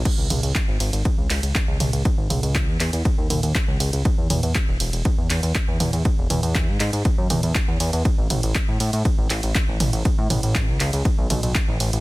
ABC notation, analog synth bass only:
X:1
M:4/4
L:1/16
Q:1/4=120
K:C#m
V:1 name="Analog synth bass" clef=bass
z C,, C,, C,, z G,,, G,,, G,,, z C,, C,, C,, z C,, C,, C,, | z G,,, C,, C,,2 E,, E,, E,, z D,, D,, D,, z C,, C,, C,, | z E,, E,, E,, z E,,, E,,, E,,, z E,, E,, E,, z E,, E,, E,, | z E,,, E,, E,,2 G,, G,, G,, z F,, E,, E,, z E,, E,, E,, |
z A,,, A,,, A,,, z A,, A,, A,, z A,,, A,,, A,,, z A,,, A,,, A,,, | z A,, A,,, A,,,2 C,, C,, C,, z B,,, B,,, B,,, z A,,, A,,, A,,, |]